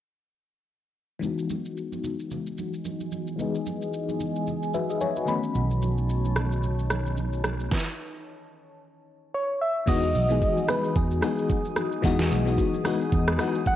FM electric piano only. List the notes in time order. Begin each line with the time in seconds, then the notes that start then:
1.20 E3 G#3 B3
1.24 D#4 F#4
3.36 E3 G#3 B3
3.41 D#4 G#4
4.74 F#4 B4 E5
4.90 G#4 D#5
5.01 G#4 C#5 G#5
5.17 F#4 B4
5.25 D3 A3 B3 B5
5.30 D#3 C#4 F#4
9.86 E3 G#3 B3 D#4 F#4
10.29 E3 G#3 B3 D#4 G#4
10.67 E3 G#3 B3 D#4 G#4
11.21 E3 G#3 B3 D#4 F#4
12.02 E3 G#3 B3 D#4 F#4
12.45 E3 G#3 B3 D#4 F#4
12.83 E3 G#3 B3 D#4 F#4
13.38 E3 G#3 B3 D#4 F#4